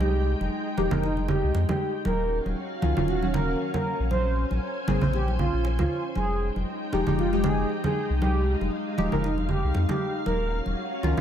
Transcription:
0.00 0.35 C2 medium
0.00 0.74 F3 medium
0.00 0.75 G#3 medium
0.00 2.02 G#3 medium
0.00 0.75 D#4 medium
0.00 2.02 D#4 medium
0.00 0.75 G4 loud
0.00 0.33 G4 loud
0.00 2.02 G5 medium
0.00 high conga medium
0.41 0.49 F1 loud
0.41 high conga medium
0.77 0.88 D#1 medium
0.77 0.89 F3 medium
0.77 0.90 G#3 medium
0.77 0.90 D#4 medium
0.77 0.90 G4 loud
0.77 muted conga medium
0.77 high conga medium
0.91 1.43 F1 medium
0.91 1.07 F3 medium
0.91 1.07 G#3 medium
0.91 1.07 D#4 medium
0.91 1.07 A#4 loud
0.91 low conga loud
1.03 1.20 D#4 medium
1.03 muted conga medium
1.17 high conga medium
1.28 1.53 G4 medium
1.28 low conga loud
1.43 1.51 C2 loud
1.54 1.65 F2 medium
1.54 muted conga medium
1.69 1.93 G4 loud
1.69 muted conga soft
1.69 high conga loud
1.69 low conga medium
2.05 2.40 D#1 loud
2.05 6.12 C#4 medium
2.05 4.09 F#4 medium
2.05 2.38 A#4 loud
2.05 4.09 F5 medium
2.05 high conga loud
2.46 2.54 D#1 loud
2.46 high conga medium
2.82 2.93 C#2 medium
2.82 2.93 D#3 medium
2.82 2.93 F#3 medium
2.82 2.94 C#4 medium
2.82 2.94 F4 loud
2.82 muted conga medium
2.82 high conga medium
2.97 3.55 D#1 medium
2.97 3.18 D#3 loud
2.97 3.18 F#3 medium
2.97 3.18 C#4 medium
2.97 3.18 F4 loud
2.97 low conga medium
3.08 3.25 F#4 medium
3.08 muted conga soft
3.22 4.09 D#3 medium
3.22 4.09 F#3 medium
3.22 4.10 C#4 medium
3.22 4.10 F#4 loud
3.22 high conga medium
3.34 3.58 A#4 loud
3.34 muted conga medium
3.34 low conga medium
3.74 3.98 A#4 medium
3.74 high conga medium
3.74 low conga medium
3.99 4.45 A#1 medium
4.11 4.43 C5 loud
4.11 6.14 C5 medium
4.11 6.14 G#5 medium
4.11 high conga loud
4.51 4.59 A#1 loud
4.51 high conga medium
4.87 4.98 G#1 medium
4.87 5.00 C#3 medium
4.87 5.00 A#3 medium
4.87 5.00 C4 medium
4.87 5.00 G#4 loud
4.87 muted conga medium
4.87 high conga loud
5.01 5.38 A#1 medium
5.01 5.17 C#3 medium
5.01 5.17 A#3 medium
5.01 5.17 C4 medium
5.01 5.17 C5 medium
5.01 low conga medium
5.13 5.30 G4 loud
5.13 muted conga medium
5.28 high conga medium
5.39 5.50 A#1 medium
5.39 5.63 F4 loud
5.39 low conga medium
5.53 5.80 A#1 medium
5.65 muted conga medium
5.79 5.87 D#2 loud
5.79 6.03 F4 medium
5.79 muted conga soft
5.79 high conga medium
5.79 low conga medium
6.16 6.50 F1 loud
6.16 10.22 G#3 medium
6.16 10.22 D#4 medium
6.16 6.49 G#4 loud
6.16 8.19 G5 medium
6.16 high conga medium
6.56 6.64 F1 loud
6.56 high conga medium
6.92 7.03 D#1 medium
6.92 7.04 F3 medium
6.92 7.04 G#3 medium
6.92 7.04 D#4 medium
6.92 7.04 G4 loud
6.92 muted conga medium
6.92 high conga medium
7.07 7.65 F1 medium
7.07 7.28 F3 loud
7.07 7.28 G#3 medium
7.07 7.29 D#4 medium
7.07 7.29 G4 loud
7.07 low conga medium
7.18 7.36 F4 medium
7.18 muted conga soft
7.32 8.95 F3 loud
7.32 8.95 G#3 medium
7.32 8.95 D#4 medium
7.32 8.96 G4 loud
7.32 high conga medium
7.44 7.68 G#4 loud
7.44 muted conga medium
7.44 low conga medium
7.84 8.08 G#4 loud
7.84 high conga medium
7.84 low conga medium
8.10 8.55 C2 medium
8.21 8.54 G4 loud
8.21 11.21 F5 medium
8.21 high conga medium
8.61 8.69 F1 loud
8.61 high conga medium
8.98 9.09 D#1 medium
8.98 9.10 F3 medium
8.98 9.10 G#3 medium
8.98 9.10 D#4 medium
8.98 9.10 G4 loud
8.98 muted conga soft
8.98 high conga medium
9.12 9.63 F1 medium
9.12 9.27 F3 medium
9.12 9.27 G#3 medium
9.12 9.27 D#4 medium
9.12 9.27 A#4 loud
9.12 low conga medium
9.24 9.41 D#4 medium
9.24 muted conga medium
9.38 high conga medium
9.49 9.73 G4 medium
9.49 low conga medium
9.64 9.72 C2 loud
9.75 9.86 F2 medium
9.75 muted conga medium
9.89 10.13 G4 medium
9.89 muted conga soft
9.89 high conga loud
9.89 low conga medium
10.26 10.60 D#1 loud
10.26 11.21 C#4 medium
10.26 11.21 F#4 medium
10.26 10.59 A#4 loud
10.26 high conga medium
10.66 10.74 D#1 loud
10.66 high conga medium
11.03 11.14 C#2 medium
11.03 11.14 D#3 loud
11.03 11.14 F#3 medium
11.03 11.14 C#4 medium
11.03 11.14 F4 loud
11.03 muted conga medium
11.03 high conga medium
11.17 11.21 D#1 medium
11.17 11.21 D#3 medium
11.17 11.21 F#3 medium
11.17 11.21 C#4 medium
11.17 11.21 F4 loud
11.17 low conga medium

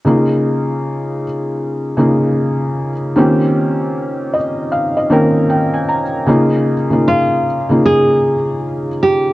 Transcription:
0.05 1.23 C#3 medium
0.05 1.24 A#3 medium
0.05 1.24 D#4 medium
0.05 1.24 F4 medium
1.97 2.89 C#3 medium
1.97 2.90 A#3 medium
1.97 2.90 D#4 medium
1.97 2.91 F4 medium
3.16 4.34 D#3 medium
3.16 4.34 A#3 medium
3.16 4.35 C4 medium
3.16 4.35 C#4 medium
3.16 4.35 F4 medium
3.16 4.36 G4 medium
4.34 4.69 D#5 medium
4.72 4.95 F5 medium
4.97 5.10 D#5 medium
5.10 6.02 D#3 medium
5.10 6.02 A#3 medium
5.10 6.02 C4 medium
5.10 6.03 C#4 medium
5.10 6.03 F4 medium
5.10 6.03 A#4 medium
5.10 5.47 G5 medium
5.50 5.73 G5 medium
5.74 5.87 G#5 medium
5.89 6.25 A#5 medium
6.26 6.73 C#3 medium
6.26 6.73 A#3 medium
6.26 6.74 D#4 medium
6.26 6.74 F4 medium
6.90 7.45 C#3 medium
6.90 7.45 A#3 medium
6.90 7.46 D#4 medium
6.90 7.46 F4 medium
7.08 7.85 F4 medium
7.69 8.87 C#3 medium
7.69 8.88 A#3 medium
7.69 8.88 D#4 medium
7.69 8.88 F4 medium
7.86 8.58 G#4 loud
9.03 9.33 G4 medium

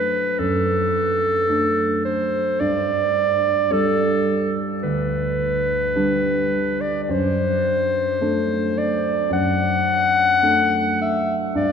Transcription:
0.00 0.39 F#2 soft
0.00 0.35 A3 soft
0.00 0.36 D4 soft
0.00 0.41 B4 medium
0.39 1.46 F#2 soft
0.39 2.04 A4 medium
1.50 2.56 A3 soft
1.50 2.56 D4 soft
2.05 2.62 C5 medium
2.60 3.68 G2 soft
2.60 3.74 D5 medium
3.71 4.79 G3 soft
3.71 4.80 D4 soft
3.71 4.57 A4 medium
4.83 5.93 D2 soft
4.83 6.82 B4 medium
5.96 7.05 G3 soft
5.96 7.06 D4 soft
6.81 7.03 D5 medium
7.04 7.13 D5 medium
7.09 8.19 F#2 soft
7.09 8.80 C5 medium
8.21 9.27 A3 soft
8.21 9.27 D4 soft
8.78 9.32 D5 medium
9.30 10.40 F#2 soft
9.30 10.98 F#5 medium
10.43 11.51 A3 soft
10.43 11.51 D4 soft
11.01 11.36 E5 medium
11.55 11.72 G2 soft
11.55 11.72 D5 medium

